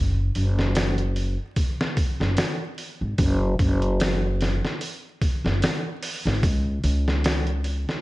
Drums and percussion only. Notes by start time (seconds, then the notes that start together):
0.35 open hi-hat
0.59 snare
0.75 snare, open hi-hat
0.98 closed hi-hat
1.16 open hi-hat
1.56 kick, open hi-hat
1.81 snare
1.97 kick, open hi-hat
2.21 snare
2.37 snare, open hi-hat
2.78 open hi-hat
3.18 kick, open hi-hat
3.59 kick, open hi-hat
3.82 closed hi-hat
4.00 snare, open hi-hat
4.41 snare, open hi-hat
4.65 snare
4.81 open hi-hat
5.21 kick, open hi-hat
5.46 snare
5.62 snare, open hi-hat
6.03 open hi-hat
6.27 snare
6.43 kick, open hi-hat
6.84 open hi-hat
7.08 snare
7.24 snare, open hi-hat
7.47 closed hi-hat
7.64 open hi-hat
7.89 snare